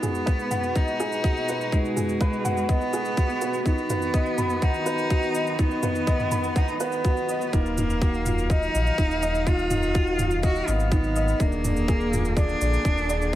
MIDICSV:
0, 0, Header, 1, 6, 480
1, 0, Start_track
1, 0, Key_signature, -6, "minor"
1, 0, Tempo, 483871
1, 1709, Time_signature, 4, 2, 24, 8
1, 13246, End_track
2, 0, Start_track
2, 0, Title_t, "Upright piano"
2, 0, Program_c, 0, 0
2, 0, Control_c, 0, 64, 127
2, 24, Note_on_c, 0, 68, 71
2, 163, Note_off_c, 0, 68, 0
2, 259, Note_on_c, 0, 71, 91
2, 492, Note_off_c, 0, 71, 0
2, 505, Note_on_c, 0, 78, 95
2, 735, Note_off_c, 0, 78, 0
2, 744, Note_on_c, 0, 75, 79
2, 974, Note_off_c, 0, 75, 0
2, 991, Note_on_c, 0, 68, 98
2, 1218, Note_off_c, 0, 68, 0
2, 1231, Note_on_c, 0, 66, 90
2, 1367, Note_off_c, 0, 66, 0
2, 1476, Note_on_c, 0, 71, 75
2, 1701, Note_off_c, 0, 71, 0
2, 1715, Note_on_c, 0, 63, 87
2, 1849, Note_off_c, 0, 63, 0
2, 1950, Note_on_c, 0, 68, 75
2, 2087, Note_off_c, 0, 68, 0
2, 2193, Note_on_c, 0, 71, 96
2, 2419, Note_off_c, 0, 71, 0
2, 2428, Note_on_c, 0, 78, 97
2, 2656, Note_off_c, 0, 78, 0
2, 2671, Note_on_c, 0, 75, 83
2, 2898, Note_off_c, 0, 75, 0
2, 2909, Note_on_c, 0, 68, 89
2, 3137, Note_off_c, 0, 68, 0
2, 3149, Note_on_c, 0, 66, 93
2, 3286, Note_off_c, 0, 66, 0
2, 3389, Note_on_c, 0, 71, 75
2, 3617, Note_off_c, 0, 71, 0
2, 3628, Note_on_c, 0, 63, 96
2, 3640, Control_c, 0, 64, 0
2, 3765, Note_off_c, 0, 63, 0
2, 3795, Control_c, 0, 64, 127
2, 3869, Note_on_c, 0, 71, 78
2, 4006, Note_off_c, 0, 71, 0
2, 4108, Note_on_c, 0, 75, 101
2, 4337, Note_off_c, 0, 75, 0
2, 4344, Note_on_c, 0, 83, 98
2, 4575, Note_off_c, 0, 83, 0
2, 4587, Note_on_c, 0, 78, 81
2, 4816, Note_off_c, 0, 78, 0
2, 4822, Note_on_c, 0, 71, 98
2, 5053, Note_off_c, 0, 71, 0
2, 5065, Note_on_c, 0, 66, 99
2, 5204, Note_off_c, 0, 66, 0
2, 5306, Note_on_c, 0, 75, 78
2, 5536, Note_off_c, 0, 75, 0
2, 5547, Note_on_c, 0, 63, 92
2, 5685, Note_off_c, 0, 63, 0
2, 5783, Note_on_c, 0, 71, 78
2, 5923, Note_off_c, 0, 71, 0
2, 6023, Note_on_c, 0, 75, 105
2, 6254, Note_off_c, 0, 75, 0
2, 6262, Note_on_c, 0, 83, 97
2, 6493, Note_off_c, 0, 83, 0
2, 6505, Note_on_c, 0, 78, 89
2, 6735, Note_off_c, 0, 78, 0
2, 6749, Note_on_c, 0, 71, 101
2, 6977, Note_off_c, 0, 71, 0
2, 6989, Note_on_c, 0, 66, 99
2, 7126, Note_off_c, 0, 66, 0
2, 7231, Note_on_c, 0, 75, 77
2, 7458, Note_off_c, 0, 75, 0
2, 7477, Note_on_c, 0, 63, 73
2, 7483, Control_c, 0, 64, 0
2, 7679, Control_c, 0, 64, 127
2, 7699, Note_off_c, 0, 63, 0
2, 7713, Note_on_c, 0, 63, 75
2, 7939, Note_off_c, 0, 63, 0
2, 7956, Note_on_c, 0, 66, 72
2, 8181, Note_off_c, 0, 66, 0
2, 8194, Note_on_c, 0, 65, 74
2, 8420, Note_off_c, 0, 65, 0
2, 8432, Note_on_c, 0, 75, 88
2, 8656, Note_off_c, 0, 75, 0
2, 8671, Note_on_c, 0, 75, 67
2, 8807, Note_off_c, 0, 75, 0
2, 8912, Note_on_c, 0, 63, 99
2, 9138, Note_off_c, 0, 63, 0
2, 9149, Note_on_c, 0, 75, 103
2, 9286, Note_off_c, 0, 75, 0
2, 9393, Note_on_c, 0, 63, 73
2, 9615, Note_off_c, 0, 63, 0
2, 9630, Note_on_c, 0, 63, 78
2, 9857, Note_off_c, 0, 63, 0
2, 9869, Note_on_c, 0, 66, 80
2, 10097, Note_off_c, 0, 66, 0
2, 10111, Note_on_c, 0, 65, 74
2, 10338, Note_off_c, 0, 65, 0
2, 10353, Note_on_c, 0, 75, 85
2, 10578, Note_off_c, 0, 75, 0
2, 10593, Note_on_c, 0, 75, 79
2, 10728, Note_off_c, 0, 75, 0
2, 10834, Note_on_c, 0, 63, 99
2, 11060, Note_off_c, 0, 63, 0
2, 11073, Note_on_c, 0, 75, 97
2, 11208, Note_off_c, 0, 75, 0
2, 11313, Note_on_c, 0, 62, 77
2, 11323, Control_c, 0, 64, 0
2, 11511, Control_c, 0, 64, 127
2, 11537, Note_off_c, 0, 62, 0
2, 11552, Note_on_c, 0, 62, 78
2, 11778, Note_off_c, 0, 62, 0
2, 11793, Note_on_c, 0, 68, 75
2, 12019, Note_off_c, 0, 68, 0
2, 12028, Note_on_c, 0, 65, 75
2, 12257, Note_off_c, 0, 65, 0
2, 12268, Note_on_c, 0, 74, 84
2, 12496, Note_off_c, 0, 74, 0
2, 12510, Note_on_c, 0, 74, 74
2, 12647, Note_off_c, 0, 74, 0
2, 12754, Note_on_c, 0, 62, 99
2, 12979, Note_off_c, 0, 62, 0
2, 12992, Note_on_c, 0, 74, 100
2, 13127, Note_off_c, 0, 74, 0
2, 13246, End_track
3, 0, Start_track
3, 0, Title_t, "Cello"
3, 0, Program_c, 1, 42
3, 0, Note_on_c, 1, 59, 107
3, 754, Note_on_c, 1, 63, 109
3, 769, Note_off_c, 1, 59, 0
3, 1717, Note_on_c, 1, 56, 102
3, 1731, Note_off_c, 1, 63, 0
3, 2675, Note_on_c, 1, 59, 115
3, 2690, Note_off_c, 1, 56, 0
3, 3629, Note_off_c, 1, 59, 0
3, 3635, Note_on_c, 1, 59, 110
3, 4597, Note_on_c, 1, 63, 114
3, 4611, Note_off_c, 1, 59, 0
3, 5549, Note_on_c, 1, 59, 105
3, 5564, Note_off_c, 1, 63, 0
3, 6520, Note_on_c, 1, 63, 93
3, 6535, Note_off_c, 1, 59, 0
3, 6745, Note_off_c, 1, 63, 0
3, 6751, Note_on_c, 1, 59, 94
3, 7465, Note_on_c, 1, 58, 103
3, 7480, Note_off_c, 1, 59, 0
3, 8444, Note_on_c, 1, 63, 120
3, 8459, Note_off_c, 1, 58, 0
3, 9395, Note_on_c, 1, 65, 119
3, 9410, Note_off_c, 1, 63, 0
3, 10352, Note_off_c, 1, 65, 0
3, 10365, Note_on_c, 1, 66, 112
3, 10610, Note_on_c, 1, 59, 100
3, 10625, Note_off_c, 1, 66, 0
3, 11327, Note_on_c, 1, 58, 110
3, 11342, Note_off_c, 1, 59, 0
3, 12280, Note_on_c, 1, 62, 115
3, 12294, Note_off_c, 1, 58, 0
3, 13246, Note_off_c, 1, 62, 0
3, 13246, End_track
4, 0, Start_track
4, 0, Title_t, "String section"
4, 0, Program_c, 2, 48
4, 0, Note_on_c, 2, 47, 75
4, 0, Note_on_c, 2, 56, 67
4, 0, Note_on_c, 2, 66, 84
4, 3587, Note_off_c, 2, 47, 0
4, 3588, Note_off_c, 2, 56, 0
4, 3635, Note_on_c, 2, 59, 67
4, 3637, Note_on_c, 2, 51, 81
4, 7424, Note_off_c, 2, 66, 0
4, 7434, Note_off_c, 2, 59, 0
4, 7435, Note_off_c, 2, 51, 0
4, 7483, Note_on_c, 2, 51, 75
4, 7484, Note_on_c, 2, 77, 87
4, 7485, Note_on_c, 2, 54, 73
4, 11278, Note_off_c, 2, 51, 0
4, 11278, Note_off_c, 2, 77, 0
4, 11279, Note_off_c, 2, 54, 0
4, 11306, Note_on_c, 2, 68, 89
4, 11307, Note_on_c, 2, 50, 78
4, 11307, Note_on_c, 2, 58, 74
4, 13246, Note_off_c, 2, 50, 0
4, 13246, Note_off_c, 2, 58, 0
4, 13246, Note_off_c, 2, 68, 0
4, 13246, End_track
5, 0, Start_track
5, 0, Title_t, "Analog synth bass"
5, 0, Program_c, 3, 38
5, 0, Note_on_c, 3, 27, 90
5, 927, Note_off_c, 3, 27, 0
5, 992, Note_on_c, 3, 34, 78
5, 1153, Note_off_c, 3, 34, 0
5, 1231, Note_on_c, 3, 27, 92
5, 2849, Note_off_c, 3, 27, 0
5, 2912, Note_on_c, 3, 32, 96
5, 3569, Note_off_c, 3, 32, 0
5, 4825, Note_on_c, 3, 34, 85
5, 4990, Note_off_c, 3, 34, 0
5, 6750, Note_on_c, 3, 32, 99
5, 7233, Note_off_c, 3, 32, 0
5, 7239, Note_on_c, 3, 34, 85
5, 7397, Note_off_c, 3, 34, 0
5, 7476, Note_on_c, 3, 27, 94
5, 8611, Note_off_c, 3, 27, 0
5, 8674, Note_on_c, 3, 34, 80
5, 8835, Note_off_c, 3, 34, 0
5, 8913, Note_on_c, 3, 27, 91
5, 10529, Note_off_c, 3, 27, 0
5, 10592, Note_on_c, 3, 32, 104
5, 11249, Note_off_c, 3, 32, 0
5, 11311, Note_on_c, 3, 27, 93
5, 12449, Note_off_c, 3, 27, 0
5, 12510, Note_on_c, 3, 34, 77
5, 12672, Note_off_c, 3, 34, 0
5, 12748, Note_on_c, 3, 27, 93
5, 13246, Note_off_c, 3, 27, 0
5, 13246, End_track
6, 0, Start_track
6, 0, Title_t, "Drums"
6, 30, Note_on_c, 9, 45, 58
6, 30, Note_on_c, 9, 82, 65
6, 129, Note_off_c, 9, 45, 0
6, 129, Note_off_c, 9, 82, 0
6, 147, Note_on_c, 9, 82, 30
6, 246, Note_off_c, 9, 82, 0
6, 268, Note_on_c, 9, 36, 102
6, 270, Note_on_c, 9, 82, 42
6, 367, Note_off_c, 9, 36, 0
6, 369, Note_off_c, 9, 82, 0
6, 390, Note_on_c, 9, 82, 19
6, 489, Note_off_c, 9, 82, 0
6, 507, Note_on_c, 9, 45, 55
6, 507, Note_on_c, 9, 82, 67
6, 606, Note_off_c, 9, 45, 0
6, 606, Note_off_c, 9, 82, 0
6, 629, Note_on_c, 9, 82, 30
6, 728, Note_off_c, 9, 82, 0
6, 749, Note_on_c, 9, 36, 92
6, 750, Note_on_c, 9, 82, 41
6, 848, Note_off_c, 9, 36, 0
6, 849, Note_off_c, 9, 82, 0
6, 870, Note_on_c, 9, 82, 20
6, 969, Note_off_c, 9, 82, 0
6, 992, Note_on_c, 9, 82, 72
6, 1091, Note_off_c, 9, 82, 0
6, 1113, Note_on_c, 9, 82, 32
6, 1212, Note_off_c, 9, 82, 0
6, 1229, Note_on_c, 9, 36, 104
6, 1234, Note_on_c, 9, 82, 38
6, 1329, Note_off_c, 9, 36, 0
6, 1333, Note_off_c, 9, 82, 0
6, 1359, Note_on_c, 9, 82, 20
6, 1458, Note_off_c, 9, 82, 0
6, 1474, Note_on_c, 9, 82, 69
6, 1573, Note_off_c, 9, 82, 0
6, 1597, Note_on_c, 9, 82, 29
6, 1697, Note_off_c, 9, 82, 0
6, 1710, Note_on_c, 9, 36, 92
6, 1717, Note_on_c, 9, 82, 37
6, 1809, Note_off_c, 9, 36, 0
6, 1817, Note_off_c, 9, 82, 0
6, 1837, Note_on_c, 9, 82, 19
6, 1936, Note_off_c, 9, 82, 0
6, 1953, Note_on_c, 9, 45, 54
6, 1953, Note_on_c, 9, 82, 72
6, 2053, Note_off_c, 9, 45, 0
6, 2053, Note_off_c, 9, 82, 0
6, 2074, Note_on_c, 9, 82, 30
6, 2173, Note_off_c, 9, 82, 0
6, 2188, Note_on_c, 9, 36, 102
6, 2194, Note_on_c, 9, 82, 39
6, 2288, Note_off_c, 9, 36, 0
6, 2293, Note_off_c, 9, 82, 0
6, 2313, Note_on_c, 9, 82, 20
6, 2413, Note_off_c, 9, 82, 0
6, 2432, Note_on_c, 9, 45, 59
6, 2432, Note_on_c, 9, 82, 70
6, 2531, Note_off_c, 9, 45, 0
6, 2531, Note_off_c, 9, 82, 0
6, 2551, Note_on_c, 9, 82, 31
6, 2651, Note_off_c, 9, 82, 0
6, 2668, Note_on_c, 9, 36, 95
6, 2669, Note_on_c, 9, 82, 37
6, 2767, Note_off_c, 9, 36, 0
6, 2768, Note_off_c, 9, 82, 0
6, 2789, Note_on_c, 9, 82, 18
6, 2888, Note_off_c, 9, 82, 0
6, 2908, Note_on_c, 9, 82, 67
6, 3007, Note_off_c, 9, 82, 0
6, 3027, Note_on_c, 9, 82, 31
6, 3126, Note_off_c, 9, 82, 0
6, 3147, Note_on_c, 9, 82, 37
6, 3148, Note_on_c, 9, 36, 99
6, 3247, Note_off_c, 9, 36, 0
6, 3247, Note_off_c, 9, 82, 0
6, 3269, Note_on_c, 9, 82, 19
6, 3369, Note_off_c, 9, 82, 0
6, 3387, Note_on_c, 9, 82, 68
6, 3486, Note_off_c, 9, 82, 0
6, 3507, Note_on_c, 9, 82, 28
6, 3607, Note_off_c, 9, 82, 0
6, 3627, Note_on_c, 9, 36, 84
6, 3630, Note_on_c, 9, 82, 39
6, 3726, Note_off_c, 9, 36, 0
6, 3730, Note_off_c, 9, 82, 0
6, 3751, Note_on_c, 9, 82, 19
6, 3850, Note_off_c, 9, 82, 0
6, 3866, Note_on_c, 9, 45, 55
6, 3866, Note_on_c, 9, 82, 72
6, 3965, Note_off_c, 9, 45, 0
6, 3965, Note_off_c, 9, 82, 0
6, 3987, Note_on_c, 9, 82, 29
6, 4086, Note_off_c, 9, 82, 0
6, 4105, Note_on_c, 9, 36, 108
6, 4109, Note_on_c, 9, 82, 40
6, 4204, Note_off_c, 9, 36, 0
6, 4208, Note_off_c, 9, 82, 0
6, 4225, Note_on_c, 9, 82, 20
6, 4325, Note_off_c, 9, 82, 0
6, 4346, Note_on_c, 9, 45, 62
6, 4346, Note_on_c, 9, 82, 70
6, 4445, Note_off_c, 9, 45, 0
6, 4445, Note_off_c, 9, 82, 0
6, 4462, Note_on_c, 9, 82, 31
6, 4561, Note_off_c, 9, 82, 0
6, 4584, Note_on_c, 9, 82, 42
6, 4585, Note_on_c, 9, 36, 98
6, 4684, Note_off_c, 9, 36, 0
6, 4684, Note_off_c, 9, 82, 0
6, 4702, Note_on_c, 9, 82, 19
6, 4801, Note_off_c, 9, 82, 0
6, 4822, Note_on_c, 9, 82, 66
6, 4921, Note_off_c, 9, 82, 0
6, 4943, Note_on_c, 9, 82, 31
6, 5043, Note_off_c, 9, 82, 0
6, 5062, Note_on_c, 9, 82, 37
6, 5063, Note_on_c, 9, 36, 104
6, 5162, Note_off_c, 9, 82, 0
6, 5163, Note_off_c, 9, 36, 0
6, 5183, Note_on_c, 9, 82, 19
6, 5282, Note_off_c, 9, 82, 0
6, 5303, Note_on_c, 9, 82, 69
6, 5402, Note_off_c, 9, 82, 0
6, 5425, Note_on_c, 9, 82, 30
6, 5524, Note_off_c, 9, 82, 0
6, 5544, Note_on_c, 9, 36, 90
6, 5544, Note_on_c, 9, 82, 39
6, 5643, Note_off_c, 9, 36, 0
6, 5643, Note_off_c, 9, 82, 0
6, 5663, Note_on_c, 9, 82, 20
6, 5763, Note_off_c, 9, 82, 0
6, 5782, Note_on_c, 9, 45, 61
6, 5782, Note_on_c, 9, 82, 69
6, 5881, Note_off_c, 9, 45, 0
6, 5881, Note_off_c, 9, 82, 0
6, 5907, Note_on_c, 9, 82, 30
6, 6006, Note_off_c, 9, 82, 0
6, 6024, Note_on_c, 9, 36, 106
6, 6025, Note_on_c, 9, 82, 38
6, 6123, Note_off_c, 9, 36, 0
6, 6124, Note_off_c, 9, 82, 0
6, 6145, Note_on_c, 9, 45, 62
6, 6145, Note_on_c, 9, 82, 20
6, 6245, Note_off_c, 9, 45, 0
6, 6245, Note_off_c, 9, 82, 0
6, 6264, Note_on_c, 9, 45, 61
6, 6264, Note_on_c, 9, 82, 72
6, 6363, Note_off_c, 9, 45, 0
6, 6363, Note_off_c, 9, 82, 0
6, 6385, Note_on_c, 9, 82, 31
6, 6485, Note_off_c, 9, 82, 0
6, 6506, Note_on_c, 9, 36, 101
6, 6507, Note_on_c, 9, 82, 41
6, 6605, Note_off_c, 9, 36, 0
6, 6606, Note_off_c, 9, 82, 0
6, 6628, Note_on_c, 9, 82, 21
6, 6727, Note_off_c, 9, 82, 0
6, 6747, Note_on_c, 9, 82, 70
6, 6846, Note_off_c, 9, 82, 0
6, 6865, Note_on_c, 9, 82, 30
6, 6964, Note_off_c, 9, 82, 0
6, 6988, Note_on_c, 9, 82, 41
6, 6989, Note_on_c, 9, 36, 99
6, 7087, Note_off_c, 9, 82, 0
6, 7088, Note_off_c, 9, 36, 0
6, 7110, Note_on_c, 9, 82, 20
6, 7209, Note_off_c, 9, 82, 0
6, 7230, Note_on_c, 9, 82, 71
6, 7329, Note_off_c, 9, 82, 0
6, 7355, Note_on_c, 9, 82, 32
6, 7454, Note_off_c, 9, 82, 0
6, 7471, Note_on_c, 9, 36, 99
6, 7472, Note_on_c, 9, 82, 43
6, 7571, Note_off_c, 9, 36, 0
6, 7572, Note_off_c, 9, 82, 0
6, 7597, Note_on_c, 9, 82, 20
6, 7696, Note_off_c, 9, 82, 0
6, 7714, Note_on_c, 9, 45, 62
6, 7714, Note_on_c, 9, 82, 73
6, 7814, Note_off_c, 9, 45, 0
6, 7814, Note_off_c, 9, 82, 0
6, 7837, Note_on_c, 9, 82, 31
6, 7936, Note_off_c, 9, 82, 0
6, 7951, Note_on_c, 9, 36, 113
6, 7956, Note_on_c, 9, 82, 41
6, 8051, Note_off_c, 9, 36, 0
6, 8055, Note_off_c, 9, 82, 0
6, 8077, Note_on_c, 9, 82, 20
6, 8177, Note_off_c, 9, 82, 0
6, 8192, Note_on_c, 9, 45, 62
6, 8192, Note_on_c, 9, 82, 74
6, 8291, Note_off_c, 9, 45, 0
6, 8291, Note_off_c, 9, 82, 0
6, 8316, Note_on_c, 9, 82, 31
6, 8415, Note_off_c, 9, 82, 0
6, 8431, Note_on_c, 9, 36, 100
6, 8438, Note_on_c, 9, 82, 42
6, 8530, Note_off_c, 9, 36, 0
6, 8537, Note_off_c, 9, 82, 0
6, 8556, Note_on_c, 9, 82, 22
6, 8655, Note_off_c, 9, 82, 0
6, 8677, Note_on_c, 9, 82, 72
6, 8777, Note_off_c, 9, 82, 0
6, 8796, Note_on_c, 9, 82, 31
6, 8895, Note_off_c, 9, 82, 0
6, 8909, Note_on_c, 9, 36, 100
6, 8916, Note_on_c, 9, 82, 38
6, 9009, Note_off_c, 9, 36, 0
6, 9015, Note_off_c, 9, 82, 0
6, 9037, Note_on_c, 9, 82, 20
6, 9136, Note_off_c, 9, 82, 0
6, 9152, Note_on_c, 9, 82, 67
6, 9251, Note_off_c, 9, 82, 0
6, 9274, Note_on_c, 9, 82, 31
6, 9373, Note_off_c, 9, 82, 0
6, 9391, Note_on_c, 9, 36, 97
6, 9394, Note_on_c, 9, 82, 44
6, 9490, Note_off_c, 9, 36, 0
6, 9493, Note_off_c, 9, 82, 0
6, 9510, Note_on_c, 9, 82, 22
6, 9609, Note_off_c, 9, 82, 0
6, 9628, Note_on_c, 9, 45, 61
6, 9628, Note_on_c, 9, 82, 73
6, 9727, Note_off_c, 9, 45, 0
6, 9727, Note_off_c, 9, 82, 0
6, 9748, Note_on_c, 9, 82, 32
6, 9848, Note_off_c, 9, 82, 0
6, 9868, Note_on_c, 9, 82, 42
6, 9870, Note_on_c, 9, 36, 108
6, 9967, Note_off_c, 9, 82, 0
6, 9969, Note_off_c, 9, 36, 0
6, 9990, Note_on_c, 9, 82, 22
6, 10089, Note_off_c, 9, 82, 0
6, 10108, Note_on_c, 9, 45, 66
6, 10108, Note_on_c, 9, 82, 75
6, 10207, Note_off_c, 9, 45, 0
6, 10207, Note_off_c, 9, 82, 0
6, 10225, Note_on_c, 9, 82, 35
6, 10324, Note_off_c, 9, 82, 0
6, 10347, Note_on_c, 9, 82, 44
6, 10350, Note_on_c, 9, 36, 99
6, 10446, Note_off_c, 9, 82, 0
6, 10449, Note_off_c, 9, 36, 0
6, 10470, Note_on_c, 9, 82, 22
6, 10570, Note_off_c, 9, 82, 0
6, 10592, Note_on_c, 9, 82, 74
6, 10691, Note_off_c, 9, 82, 0
6, 10711, Note_on_c, 9, 82, 31
6, 10811, Note_off_c, 9, 82, 0
6, 10829, Note_on_c, 9, 36, 114
6, 10829, Note_on_c, 9, 82, 42
6, 10928, Note_off_c, 9, 36, 0
6, 10928, Note_off_c, 9, 82, 0
6, 10949, Note_on_c, 9, 82, 20
6, 11048, Note_off_c, 9, 82, 0
6, 11070, Note_on_c, 9, 82, 75
6, 11169, Note_off_c, 9, 82, 0
6, 11190, Note_on_c, 9, 82, 32
6, 11289, Note_off_c, 9, 82, 0
6, 11309, Note_on_c, 9, 36, 101
6, 11309, Note_on_c, 9, 82, 43
6, 11408, Note_off_c, 9, 36, 0
6, 11408, Note_off_c, 9, 82, 0
6, 11430, Note_on_c, 9, 82, 22
6, 11529, Note_off_c, 9, 82, 0
6, 11552, Note_on_c, 9, 45, 64
6, 11552, Note_on_c, 9, 82, 80
6, 11651, Note_off_c, 9, 45, 0
6, 11651, Note_off_c, 9, 82, 0
6, 11671, Note_on_c, 9, 82, 34
6, 11770, Note_off_c, 9, 82, 0
6, 11788, Note_on_c, 9, 36, 118
6, 11792, Note_on_c, 9, 82, 45
6, 11887, Note_off_c, 9, 36, 0
6, 11891, Note_off_c, 9, 82, 0
6, 11910, Note_on_c, 9, 82, 21
6, 12009, Note_off_c, 9, 82, 0
6, 12035, Note_on_c, 9, 45, 62
6, 12035, Note_on_c, 9, 82, 76
6, 12134, Note_off_c, 9, 45, 0
6, 12134, Note_off_c, 9, 82, 0
6, 12152, Note_on_c, 9, 82, 34
6, 12251, Note_off_c, 9, 82, 0
6, 12267, Note_on_c, 9, 36, 109
6, 12271, Note_on_c, 9, 82, 44
6, 12367, Note_off_c, 9, 36, 0
6, 12370, Note_off_c, 9, 82, 0
6, 12391, Note_on_c, 9, 82, 23
6, 12491, Note_off_c, 9, 82, 0
6, 12511, Note_on_c, 9, 82, 78
6, 12611, Note_off_c, 9, 82, 0
6, 12634, Note_on_c, 9, 82, 34
6, 12733, Note_off_c, 9, 82, 0
6, 12747, Note_on_c, 9, 36, 107
6, 12754, Note_on_c, 9, 82, 44
6, 12846, Note_off_c, 9, 36, 0
6, 12853, Note_off_c, 9, 82, 0
6, 12874, Note_on_c, 9, 82, 22
6, 12973, Note_off_c, 9, 82, 0
6, 12991, Note_on_c, 9, 82, 76
6, 13090, Note_off_c, 9, 82, 0
6, 13113, Note_on_c, 9, 82, 33
6, 13212, Note_off_c, 9, 82, 0
6, 13246, End_track
0, 0, End_of_file